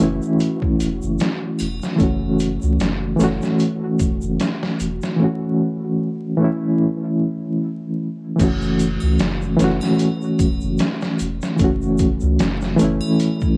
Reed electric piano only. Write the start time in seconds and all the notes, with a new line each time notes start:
Already playing: E3 F#4
0.00 A3 C#4 E4
1.96 E3 A3
2.01 C#4 F#4
3.16 E3 A3
3.21 C#4 F#4
5.17 E3 A3
5.22 C#4 F#4
6.37 E3 A3
6.42 C#4 E4
8.36 E3 A3
8.41 C#4 F#4
9.56 E3 A3
9.62 C#4 F#4
11.56 E3 A3
11.62 C#4 F#4
12.77 E3 A3
12.81 C#4 E4